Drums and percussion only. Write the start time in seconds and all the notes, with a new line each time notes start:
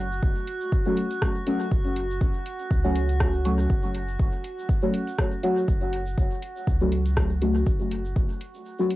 0.12 shaker
0.22 kick, shaker
0.36 shaker
0.47 closed hi-hat
0.61 shaker
0.72 kick, shaker
0.86 shaker
0.97 closed hi-hat
1.11 closed hi-hat, shaker
1.22 kick, cross-stick, shaker
1.35 shaker
1.47 closed hi-hat
1.60 shaker
1.71 kick, shaker
1.85 shaker
1.96 closed hi-hat
2.10 shaker
2.21 kick, shaker
2.35 shaker
2.46 closed hi-hat
2.59 shaker
2.71 kick, shaker
2.85 shaker
2.95 closed hi-hat
3.09 closed hi-hat, shaker
3.20 kick, cross-stick, shaker
3.34 shaker
3.45 closed hi-hat
3.59 shaker
3.69 kick, shaker
3.83 shaker
3.95 closed hi-hat
4.08 shaker
4.19 kick, shaker
4.32 shaker
4.44 closed hi-hat
4.59 shaker
4.69 kick, shaker
4.83 shaker
4.94 closed hi-hat
5.07 closed hi-hat, shaker
5.18 kick, cross-stick, shaker
5.32 shaker
5.43 closed hi-hat
5.57 shaker
5.68 kick, shaker
5.82 shaker
5.93 closed hi-hat
6.06 shaker
6.18 kick, shaker
6.31 shaker
6.42 closed hi-hat
6.56 shaker
6.67 kick, shaker
6.81 shaker
6.92 closed hi-hat
7.06 closed hi-hat, shaker
7.16 kick, cross-stick, shaker
7.30 shaker
7.42 closed hi-hat
7.55 shaker
7.66 kick, shaker
7.80 shaker
7.91 closed hi-hat
8.05 shaker
8.16 kick, shaker
8.30 shaker
8.41 closed hi-hat
8.54 shaker
8.66 shaker
8.79 shaker
8.90 closed hi-hat